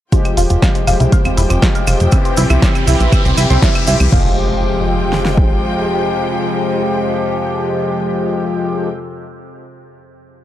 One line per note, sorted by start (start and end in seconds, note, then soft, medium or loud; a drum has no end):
0.12 4.11 F2 medium
0.12 4.11 C3 medium
0.12 0.85 F3 medium
0.12 0.85 G#3 medium
0.12 2.10 G#3 medium
0.12 0.18 F4 loud
0.12 2.10 F4 medium
0.12 0.85 G4 loud
0.12 4.08 C5 medium
0.12 4.08 G5 medium
0.12 kick loud
0.12 closed hi-hat medium
0.12 riser medium
0.12 cabasa soft
0.25 0.37 C4 medium
0.25 closed hi-hat soft
0.25 cabasa soft
0.25 claves soft
0.37 0.46 F1 loud
0.37 0.43 F4 loud
0.37 open hi-hat loud
0.37 cabasa medium
0.50 0.58 F1 medium
0.50 0.62 F4 medium
0.50 closed hi-hat soft
0.50 cabasa soft
0.62 0.71 F5 loud
0.62 kick loud
0.62 snare loud
0.62 closed hi-hat medium
0.62 cabasa soft
0.62 claves medium
0.75 closed hi-hat soft
0.75 cabasa soft
0.87 0.96 F1 medium
0.87 2.10 F3 medium
0.87 2.10 G#3 medium
0.87 0.96 F4 loud
0.87 2.10 G4 loud
0.87 open hi-hat loud
0.87 cabasa medium
0.87 claves soft
1.00 1.08 C2 medium
1.00 1.12 E4 medium
1.00 closed hi-hat soft
1.00 cabasa soft
1.12 1.21 F5 loud
1.12 kick loud
1.12 closed hi-hat medium
1.12 cabasa soft
1.25 1.33 F1 medium
1.25 1.37 C4 medium
1.25 closed hi-hat soft
1.25 cabasa soft
1.25 claves medium
1.37 1.46 F1 loud
1.37 1.43 E4 loud
1.37 open hi-hat loud
1.37 cabasa medium
1.50 1.58 F1 medium
1.50 1.58 C4 loud
1.50 closed hi-hat soft
1.50 cabasa soft
1.50 claves soft
1.62 1.75 F4 loud
1.62 kick loud
1.62 snare loud
1.62 closed hi-hat medium
1.62 cabasa soft
1.75 1.87 F5 medium
1.75 closed hi-hat soft
1.75 cabasa soft
1.87 1.96 F1 loud
1.87 1.96 F4 loud
1.87 open hi-hat loud
1.87 cabasa loud
1.87 claves medium
2.00 2.08 F1 medium
2.00 closed hi-hat soft
2.00 cabasa soft
2.12 2.85 E3 medium
2.12 2.85 C4 medium
2.12 2.18 E4 loud
2.12 4.10 E4 medium
2.12 4.10 G4 medium
2.12 2.85 G4 loud
2.12 kick loud
2.12 closed hi-hat medium
2.12 cabasa medium
2.12 claves medium
2.25 2.37 C4 medium
2.25 closed hi-hat soft
2.25 cabasa soft
2.37 2.46 C2 medium
2.37 2.43 E4 loud
2.37 open hi-hat loud
2.37 cabasa loud
2.50 2.58 C2 medium
2.50 2.62 E4 medium
2.50 closed hi-hat soft
2.50 cabasa soft
2.50 claves medium
2.62 2.71 E5 loud
2.62 kick loud
2.62 snare loud
2.62 closed hi-hat medium
2.62 cabasa medium
2.75 closed hi-hat soft
2.75 cabasa soft
2.75 claves medium
2.87 2.96 C2 medium
2.87 4.10 E3 medium
2.87 4.10 C4 medium
2.87 2.96 E4 loud
2.87 4.10 G4 loud
2.87 open hi-hat loud
2.87 cabasa loud
3.00 3.08 A#1 medium
3.00 3.12 E4 medium
3.00 closed hi-hat soft
3.00 cabasa soft
3.12 3.21 E5 loud
3.12 kick loud
3.12 closed hi-hat medium
3.12 cabasa medium
3.12 claves medium
3.25 3.33 C2 medium
3.25 3.37 C4 medium
3.25 closed hi-hat soft
3.25 cabasa soft
3.37 3.46 C2 loud
3.37 3.43 E4 loud
3.37 open hi-hat loud
3.37 cabasa medium
3.37 claves soft
3.50 3.58 C2 medium
3.50 3.59 C4 loud
3.50 snare soft
3.50 closed hi-hat soft
3.50 cabasa soft
3.62 3.75 E4 loud
3.62 kick loud
3.62 snare loud
3.62 closed hi-hat medium
3.62 cabasa medium
3.75 3.87 E5 medium
3.75 closed hi-hat soft
3.75 cabasa soft
3.75 claves medium
3.87 3.96 C2 loud
3.87 3.96 E4 loud
3.87 open hi-hat loud
3.87 cabasa loud
4.00 4.08 C2 medium
4.00 closed hi-hat soft
4.00 cabasa soft
4.00 claves medium
4.12 5.58 F1 loud
4.12 8.94 F2 medium
4.12 8.94 C3 medium
4.12 8.88 F3 medium
4.12 8.88 G#3 medium
4.12 4.36 F4 medium
4.12 8.88 F4 medium
4.12 8.88 G4 medium
4.12 8.88 G5 medium
4.12 kick loud
4.12 crash medium
4.12 impact medium
5.13 snare medium
5.25 snare medium
5.37 kick medium